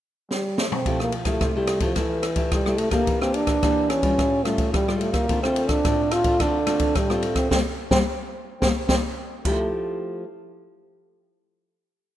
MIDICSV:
0, 0, Header, 1, 4, 480
1, 0, Start_track
1, 0, Key_signature, -1, "major"
1, 0, Tempo, 554017
1, 749, Time_signature, 4, 2, 24, 8
1, 10536, End_track
2, 0, Start_track
2, 0, Title_t, "Nylon-string guitar"
2, 0, Program_c, 0, 24
2, 746, Note_on_c, 0, 53, 61
2, 747, Note_on_c, 0, 57, 45
2, 749, Note_on_c, 0, 64, 52
2, 754, Note_on_c, 0, 67, 53
2, 971, Note_off_c, 0, 57, 0
2, 974, Note_off_c, 0, 64, 0
2, 975, Note_off_c, 0, 67, 0
2, 1088, Note_on_c, 0, 57, 53
2, 1093, Note_on_c, 0, 64, 58
2, 1097, Note_on_c, 0, 67, 56
2, 1202, Note_off_c, 0, 53, 0
2, 1218, Note_on_c, 0, 48, 57
2, 1299, Note_off_c, 0, 57, 0
2, 1302, Note_off_c, 0, 64, 0
2, 1304, Note_off_c, 0, 67, 0
2, 1350, Note_on_c, 0, 57, 52
2, 1354, Note_on_c, 0, 64, 47
2, 1356, Note_on_c, 0, 67, 60
2, 1550, Note_off_c, 0, 57, 0
2, 1551, Note_off_c, 0, 64, 0
2, 1553, Note_off_c, 0, 67, 0
2, 1568, Note_on_c, 0, 57, 52
2, 1573, Note_on_c, 0, 64, 48
2, 1575, Note_on_c, 0, 67, 55
2, 1659, Note_off_c, 0, 57, 0
2, 1661, Note_off_c, 0, 64, 0
2, 1662, Note_off_c, 0, 67, 0
2, 1678, Note_off_c, 0, 48, 0
2, 1706, Note_on_c, 0, 57, 50
2, 1711, Note_on_c, 0, 67, 51
2, 1712, Note_on_c, 0, 64, 56
2, 1932, Note_off_c, 0, 57, 0
2, 1933, Note_off_c, 0, 64, 0
2, 1934, Note_off_c, 0, 67, 0
2, 2046, Note_on_c, 0, 57, 50
2, 2051, Note_on_c, 0, 64, 49
2, 2056, Note_on_c, 0, 67, 56
2, 2186, Note_on_c, 0, 48, 56
2, 2257, Note_off_c, 0, 57, 0
2, 2260, Note_off_c, 0, 64, 0
2, 2262, Note_off_c, 0, 67, 0
2, 2310, Note_on_c, 0, 57, 52
2, 2314, Note_on_c, 0, 64, 52
2, 2319, Note_on_c, 0, 67, 61
2, 2509, Note_off_c, 0, 57, 0
2, 2512, Note_off_c, 0, 64, 0
2, 2513, Note_off_c, 0, 67, 0
2, 2527, Note_on_c, 0, 58, 57
2, 2531, Note_on_c, 0, 62, 53
2, 2535, Note_on_c, 0, 67, 58
2, 2642, Note_off_c, 0, 48, 0
2, 2657, Note_on_c, 0, 52, 60
2, 2774, Note_off_c, 0, 58, 0
2, 2777, Note_off_c, 0, 62, 0
2, 2779, Note_off_c, 0, 67, 0
2, 2783, Note_on_c, 0, 58, 59
2, 2789, Note_on_c, 0, 62, 60
2, 2790, Note_on_c, 0, 67, 61
2, 3107, Note_off_c, 0, 58, 0
2, 3108, Note_off_c, 0, 62, 0
2, 3109, Note_off_c, 0, 67, 0
2, 3117, Note_off_c, 0, 52, 0
2, 3139, Note_on_c, 0, 52, 67
2, 3140, Note_on_c, 0, 58, 48
2, 3145, Note_on_c, 0, 62, 53
2, 3149, Note_on_c, 0, 67, 50
2, 3463, Note_off_c, 0, 58, 0
2, 3467, Note_off_c, 0, 62, 0
2, 3469, Note_off_c, 0, 67, 0
2, 3488, Note_on_c, 0, 55, 54
2, 3491, Note_on_c, 0, 61, 52
2, 3494, Note_on_c, 0, 65, 56
2, 3599, Note_off_c, 0, 52, 0
2, 3622, Note_on_c, 0, 45, 67
2, 3818, Note_off_c, 0, 55, 0
2, 3820, Note_off_c, 0, 61, 0
2, 3821, Note_off_c, 0, 65, 0
2, 3858, Note_on_c, 0, 55, 46
2, 3862, Note_on_c, 0, 61, 53
2, 3864, Note_on_c, 0, 65, 58
2, 4080, Note_off_c, 0, 45, 0
2, 4102, Note_on_c, 0, 45, 59
2, 4183, Note_off_c, 0, 55, 0
2, 4185, Note_off_c, 0, 61, 0
2, 4186, Note_off_c, 0, 65, 0
2, 4228, Note_on_c, 0, 55, 58
2, 4233, Note_on_c, 0, 61, 53
2, 4237, Note_on_c, 0, 65, 66
2, 4560, Note_off_c, 0, 45, 0
2, 4568, Note_off_c, 0, 55, 0
2, 4570, Note_off_c, 0, 61, 0
2, 4572, Note_off_c, 0, 65, 0
2, 4587, Note_on_c, 0, 50, 66
2, 4588, Note_on_c, 0, 57, 48
2, 4591, Note_on_c, 0, 60, 51
2, 4595, Note_on_c, 0, 65, 59
2, 4668, Note_off_c, 0, 57, 0
2, 4670, Note_off_c, 0, 60, 0
2, 4672, Note_off_c, 0, 65, 0
2, 4717, Note_on_c, 0, 57, 56
2, 4721, Note_on_c, 0, 60, 63
2, 4722, Note_on_c, 0, 65, 66
2, 5033, Note_off_c, 0, 57, 0
2, 5034, Note_off_c, 0, 60, 0
2, 5036, Note_off_c, 0, 65, 0
2, 5043, Note_off_c, 0, 50, 0
2, 5073, Note_on_c, 0, 45, 62
2, 5074, Note_on_c, 0, 57, 46
2, 5081, Note_on_c, 0, 60, 45
2, 5081, Note_on_c, 0, 65, 53
2, 5391, Note_off_c, 0, 57, 0
2, 5393, Note_off_c, 0, 60, 0
2, 5395, Note_off_c, 0, 65, 0
2, 5420, Note_on_c, 0, 57, 58
2, 5422, Note_on_c, 0, 60, 47
2, 5426, Note_on_c, 0, 65, 66
2, 5505, Note_off_c, 0, 57, 0
2, 5505, Note_off_c, 0, 60, 0
2, 5508, Note_off_c, 0, 65, 0
2, 5527, Note_off_c, 0, 45, 0
2, 5550, Note_on_c, 0, 50, 63
2, 5553, Note_on_c, 0, 57, 47
2, 5556, Note_on_c, 0, 60, 56
2, 5564, Note_on_c, 0, 65, 63
2, 5690, Note_off_c, 0, 57, 0
2, 5693, Note_off_c, 0, 60, 0
2, 5695, Note_off_c, 0, 65, 0
2, 5776, Note_on_c, 0, 57, 47
2, 5781, Note_on_c, 0, 60, 52
2, 5784, Note_on_c, 0, 65, 53
2, 6005, Note_off_c, 0, 50, 0
2, 6007, Note_off_c, 0, 57, 0
2, 6008, Note_off_c, 0, 60, 0
2, 6010, Note_off_c, 0, 65, 0
2, 6023, Note_on_c, 0, 45, 57
2, 6151, Note_on_c, 0, 57, 54
2, 6155, Note_on_c, 0, 60, 55
2, 6159, Note_on_c, 0, 65, 61
2, 6481, Note_off_c, 0, 45, 0
2, 6490, Note_off_c, 0, 57, 0
2, 6492, Note_off_c, 0, 60, 0
2, 6494, Note_off_c, 0, 65, 0
2, 6507, Note_on_c, 0, 55, 74
2, 6511, Note_on_c, 0, 58, 85
2, 6514, Note_on_c, 0, 60, 75
2, 6585, Note_off_c, 0, 55, 0
2, 6585, Note_off_c, 0, 58, 0
2, 6585, Note_off_c, 0, 60, 0
2, 6854, Note_on_c, 0, 55, 80
2, 6854, Note_on_c, 0, 58, 92
2, 6854, Note_on_c, 0, 60, 89
2, 6935, Note_off_c, 0, 60, 0
2, 6936, Note_off_c, 0, 58, 0
2, 6937, Note_off_c, 0, 55, 0
2, 7467, Note_on_c, 0, 55, 87
2, 7469, Note_on_c, 0, 58, 91
2, 7470, Note_on_c, 0, 60, 79
2, 7544, Note_off_c, 0, 55, 0
2, 7545, Note_off_c, 0, 58, 0
2, 7545, Note_off_c, 0, 60, 0
2, 7700, Note_on_c, 0, 55, 77
2, 7705, Note_on_c, 0, 58, 75
2, 7708, Note_on_c, 0, 60, 82
2, 7781, Note_off_c, 0, 55, 0
2, 7781, Note_off_c, 0, 60, 0
2, 7782, Note_off_c, 0, 58, 0
2, 8185, Note_on_c, 0, 53, 61
2, 8193, Note_on_c, 0, 57, 59
2, 8200, Note_on_c, 0, 64, 59
2, 8205, Note_on_c, 0, 67, 59
2, 8870, Note_off_c, 0, 53, 0
2, 8870, Note_off_c, 0, 57, 0
2, 8870, Note_off_c, 0, 64, 0
2, 8870, Note_off_c, 0, 67, 0
2, 10536, End_track
3, 0, Start_track
3, 0, Title_t, "Trombone"
3, 0, Program_c, 1, 57
3, 268, Note_on_c, 1, 55, 71
3, 491, Note_off_c, 1, 55, 0
3, 517, Note_on_c, 1, 57, 63
3, 569, Note_off_c, 1, 57, 0
3, 637, Note_on_c, 1, 60, 73
3, 856, Note_off_c, 1, 60, 0
3, 883, Note_on_c, 1, 58, 67
3, 987, Note_off_c, 1, 58, 0
3, 1105, Note_on_c, 1, 57, 68
3, 1372, Note_on_c, 1, 55, 67
3, 1385, Note_off_c, 1, 57, 0
3, 1579, Note_off_c, 1, 55, 0
3, 1584, Note_on_c, 1, 53, 69
3, 1697, Note_off_c, 1, 53, 0
3, 1718, Note_on_c, 1, 52, 70
3, 2192, Note_on_c, 1, 55, 74
3, 2205, Note_off_c, 1, 52, 0
3, 2415, Note_on_c, 1, 57, 73
3, 2428, Note_off_c, 1, 55, 0
3, 2521, Note_off_c, 1, 57, 0
3, 2526, Note_on_c, 1, 58, 79
3, 2791, Note_on_c, 1, 60, 76
3, 2804, Note_off_c, 1, 58, 0
3, 2901, Note_on_c, 1, 62, 86
3, 2914, Note_off_c, 1, 60, 0
3, 3377, Note_on_c, 1, 61, 89
3, 3390, Note_off_c, 1, 62, 0
3, 3855, Note_on_c, 1, 57, 81
3, 3868, Note_off_c, 1, 61, 0
3, 4100, Note_off_c, 1, 57, 0
3, 4108, Note_on_c, 1, 55, 78
3, 4338, Note_on_c, 1, 57, 77
3, 4351, Note_off_c, 1, 55, 0
3, 4450, Note_on_c, 1, 58, 82
3, 4463, Note_off_c, 1, 57, 0
3, 4698, Note_off_c, 1, 58, 0
3, 4706, Note_on_c, 1, 60, 75
3, 4931, Note_on_c, 1, 62, 82
3, 4944, Note_off_c, 1, 60, 0
3, 5306, Note_on_c, 1, 65, 92
3, 5319, Note_off_c, 1, 62, 0
3, 5556, Note_on_c, 1, 62, 88
3, 5569, Note_off_c, 1, 65, 0
3, 6034, Note_on_c, 1, 55, 76
3, 6047, Note_off_c, 1, 62, 0
3, 6270, Note_off_c, 1, 55, 0
3, 6380, Note_on_c, 1, 60, 77
3, 6495, Note_off_c, 1, 60, 0
3, 6510, Note_on_c, 1, 60, 78
3, 6567, Note_off_c, 1, 60, 0
3, 6854, Note_on_c, 1, 60, 86
3, 6916, Note_off_c, 1, 60, 0
3, 7462, Note_on_c, 1, 60, 75
3, 7521, Note_off_c, 1, 60, 0
3, 7698, Note_on_c, 1, 60, 86
3, 7759, Note_off_c, 1, 60, 0
3, 8189, Note_on_c, 1, 57, 69
3, 8412, Note_off_c, 1, 57, 0
3, 10536, End_track
4, 0, Start_track
4, 0, Title_t, "Drums"
4, 266, Note_on_c, 9, 38, 43
4, 353, Note_off_c, 9, 38, 0
4, 502, Note_on_c, 9, 38, 60
4, 588, Note_off_c, 9, 38, 0
4, 622, Note_on_c, 9, 45, 59
4, 709, Note_off_c, 9, 45, 0
4, 743, Note_on_c, 9, 36, 58
4, 743, Note_on_c, 9, 51, 44
4, 829, Note_off_c, 9, 36, 0
4, 830, Note_off_c, 9, 51, 0
4, 866, Note_on_c, 9, 37, 57
4, 953, Note_off_c, 9, 37, 0
4, 972, Note_on_c, 9, 51, 41
4, 1059, Note_off_c, 9, 51, 0
4, 1084, Note_on_c, 9, 37, 55
4, 1084, Note_on_c, 9, 51, 43
4, 1086, Note_on_c, 9, 36, 57
4, 1170, Note_off_c, 9, 37, 0
4, 1170, Note_off_c, 9, 51, 0
4, 1173, Note_off_c, 9, 36, 0
4, 1220, Note_on_c, 9, 37, 59
4, 1220, Note_on_c, 9, 51, 40
4, 1221, Note_on_c, 9, 36, 73
4, 1307, Note_off_c, 9, 36, 0
4, 1307, Note_off_c, 9, 37, 0
4, 1307, Note_off_c, 9, 51, 0
4, 1450, Note_on_c, 9, 37, 62
4, 1450, Note_on_c, 9, 51, 44
4, 1536, Note_off_c, 9, 37, 0
4, 1536, Note_off_c, 9, 51, 0
4, 1562, Note_on_c, 9, 51, 45
4, 1565, Note_on_c, 9, 36, 61
4, 1649, Note_off_c, 9, 51, 0
4, 1652, Note_off_c, 9, 36, 0
4, 1695, Note_on_c, 9, 37, 58
4, 1695, Note_on_c, 9, 51, 43
4, 1700, Note_on_c, 9, 36, 57
4, 1782, Note_off_c, 9, 37, 0
4, 1782, Note_off_c, 9, 51, 0
4, 1786, Note_off_c, 9, 36, 0
4, 1930, Note_on_c, 9, 37, 57
4, 1930, Note_on_c, 9, 51, 44
4, 2016, Note_off_c, 9, 37, 0
4, 2016, Note_off_c, 9, 51, 0
4, 2042, Note_on_c, 9, 51, 46
4, 2045, Note_on_c, 9, 36, 61
4, 2128, Note_off_c, 9, 51, 0
4, 2132, Note_off_c, 9, 36, 0
4, 2179, Note_on_c, 9, 37, 59
4, 2179, Note_on_c, 9, 51, 41
4, 2182, Note_on_c, 9, 36, 77
4, 2266, Note_off_c, 9, 37, 0
4, 2266, Note_off_c, 9, 51, 0
4, 2268, Note_off_c, 9, 36, 0
4, 2304, Note_on_c, 9, 37, 57
4, 2390, Note_off_c, 9, 37, 0
4, 2410, Note_on_c, 9, 51, 46
4, 2497, Note_off_c, 9, 51, 0
4, 2523, Note_on_c, 9, 37, 56
4, 2523, Note_on_c, 9, 51, 44
4, 2526, Note_on_c, 9, 36, 57
4, 2609, Note_off_c, 9, 37, 0
4, 2609, Note_off_c, 9, 51, 0
4, 2613, Note_off_c, 9, 36, 0
4, 2661, Note_on_c, 9, 51, 44
4, 2663, Note_on_c, 9, 36, 61
4, 2748, Note_off_c, 9, 51, 0
4, 2749, Note_off_c, 9, 36, 0
4, 2786, Note_on_c, 9, 37, 64
4, 2873, Note_off_c, 9, 37, 0
4, 2893, Note_on_c, 9, 51, 45
4, 2980, Note_off_c, 9, 51, 0
4, 3006, Note_on_c, 9, 37, 60
4, 3006, Note_on_c, 9, 51, 44
4, 3008, Note_on_c, 9, 36, 59
4, 3093, Note_off_c, 9, 37, 0
4, 3093, Note_off_c, 9, 51, 0
4, 3095, Note_off_c, 9, 36, 0
4, 3142, Note_on_c, 9, 37, 58
4, 3142, Note_on_c, 9, 51, 42
4, 3144, Note_on_c, 9, 36, 74
4, 3229, Note_off_c, 9, 37, 0
4, 3229, Note_off_c, 9, 51, 0
4, 3231, Note_off_c, 9, 36, 0
4, 3377, Note_on_c, 9, 37, 54
4, 3377, Note_on_c, 9, 51, 42
4, 3464, Note_off_c, 9, 37, 0
4, 3464, Note_off_c, 9, 51, 0
4, 3491, Note_on_c, 9, 36, 60
4, 3491, Note_on_c, 9, 51, 41
4, 3577, Note_off_c, 9, 36, 0
4, 3577, Note_off_c, 9, 51, 0
4, 3626, Note_on_c, 9, 36, 59
4, 3628, Note_on_c, 9, 37, 58
4, 3628, Note_on_c, 9, 51, 39
4, 3713, Note_off_c, 9, 36, 0
4, 3715, Note_off_c, 9, 37, 0
4, 3715, Note_off_c, 9, 51, 0
4, 3857, Note_on_c, 9, 37, 62
4, 3857, Note_on_c, 9, 51, 37
4, 3944, Note_off_c, 9, 37, 0
4, 3944, Note_off_c, 9, 51, 0
4, 3968, Note_on_c, 9, 51, 43
4, 3970, Note_on_c, 9, 36, 64
4, 4055, Note_off_c, 9, 51, 0
4, 4056, Note_off_c, 9, 36, 0
4, 4105, Note_on_c, 9, 37, 58
4, 4105, Note_on_c, 9, 51, 44
4, 4106, Note_on_c, 9, 36, 72
4, 4192, Note_off_c, 9, 37, 0
4, 4192, Note_off_c, 9, 51, 0
4, 4193, Note_off_c, 9, 36, 0
4, 4232, Note_on_c, 9, 37, 58
4, 4318, Note_off_c, 9, 37, 0
4, 4338, Note_on_c, 9, 51, 39
4, 4424, Note_off_c, 9, 51, 0
4, 4450, Note_on_c, 9, 37, 58
4, 4450, Note_on_c, 9, 51, 37
4, 4451, Note_on_c, 9, 36, 62
4, 4537, Note_off_c, 9, 37, 0
4, 4537, Note_off_c, 9, 51, 0
4, 4538, Note_off_c, 9, 36, 0
4, 4584, Note_on_c, 9, 51, 42
4, 4586, Note_on_c, 9, 36, 62
4, 4671, Note_off_c, 9, 51, 0
4, 4673, Note_off_c, 9, 36, 0
4, 4709, Note_on_c, 9, 37, 65
4, 4796, Note_off_c, 9, 37, 0
4, 4817, Note_on_c, 9, 51, 45
4, 4904, Note_off_c, 9, 51, 0
4, 4928, Note_on_c, 9, 37, 59
4, 4928, Note_on_c, 9, 51, 43
4, 4931, Note_on_c, 9, 36, 64
4, 5015, Note_off_c, 9, 37, 0
4, 5015, Note_off_c, 9, 51, 0
4, 5017, Note_off_c, 9, 36, 0
4, 5066, Note_on_c, 9, 37, 56
4, 5066, Note_on_c, 9, 51, 44
4, 5067, Note_on_c, 9, 36, 76
4, 5153, Note_off_c, 9, 36, 0
4, 5153, Note_off_c, 9, 37, 0
4, 5153, Note_off_c, 9, 51, 0
4, 5297, Note_on_c, 9, 37, 60
4, 5297, Note_on_c, 9, 51, 48
4, 5383, Note_off_c, 9, 37, 0
4, 5383, Note_off_c, 9, 51, 0
4, 5408, Note_on_c, 9, 51, 46
4, 5411, Note_on_c, 9, 36, 63
4, 5495, Note_off_c, 9, 51, 0
4, 5497, Note_off_c, 9, 36, 0
4, 5544, Note_on_c, 9, 37, 61
4, 5544, Note_on_c, 9, 51, 45
4, 5546, Note_on_c, 9, 36, 60
4, 5630, Note_off_c, 9, 37, 0
4, 5630, Note_off_c, 9, 51, 0
4, 5633, Note_off_c, 9, 36, 0
4, 5776, Note_on_c, 9, 37, 64
4, 5776, Note_on_c, 9, 51, 45
4, 5862, Note_off_c, 9, 37, 0
4, 5862, Note_off_c, 9, 51, 0
4, 5887, Note_on_c, 9, 51, 49
4, 5890, Note_on_c, 9, 36, 60
4, 5974, Note_off_c, 9, 51, 0
4, 5977, Note_off_c, 9, 36, 0
4, 6024, Note_on_c, 9, 37, 58
4, 6024, Note_on_c, 9, 51, 44
4, 6027, Note_on_c, 9, 36, 75
4, 6111, Note_off_c, 9, 37, 0
4, 6111, Note_off_c, 9, 51, 0
4, 6113, Note_off_c, 9, 36, 0
4, 6150, Note_on_c, 9, 37, 57
4, 6237, Note_off_c, 9, 37, 0
4, 6259, Note_on_c, 9, 51, 46
4, 6346, Note_off_c, 9, 51, 0
4, 6373, Note_on_c, 9, 36, 59
4, 6373, Note_on_c, 9, 37, 62
4, 6373, Note_on_c, 9, 51, 42
4, 6460, Note_off_c, 9, 36, 0
4, 6460, Note_off_c, 9, 37, 0
4, 6460, Note_off_c, 9, 51, 0
4, 6508, Note_on_c, 9, 36, 67
4, 6509, Note_on_c, 9, 38, 67
4, 6594, Note_off_c, 9, 36, 0
4, 6595, Note_off_c, 9, 38, 0
4, 6853, Note_on_c, 9, 36, 64
4, 6853, Note_on_c, 9, 38, 64
4, 6939, Note_off_c, 9, 36, 0
4, 6940, Note_off_c, 9, 38, 0
4, 7467, Note_on_c, 9, 38, 61
4, 7468, Note_on_c, 9, 36, 62
4, 7554, Note_off_c, 9, 38, 0
4, 7555, Note_off_c, 9, 36, 0
4, 7700, Note_on_c, 9, 36, 60
4, 7700, Note_on_c, 9, 38, 64
4, 7786, Note_off_c, 9, 38, 0
4, 7787, Note_off_c, 9, 36, 0
4, 8188, Note_on_c, 9, 36, 72
4, 8188, Note_on_c, 9, 49, 62
4, 8275, Note_off_c, 9, 36, 0
4, 8275, Note_off_c, 9, 49, 0
4, 10536, End_track
0, 0, End_of_file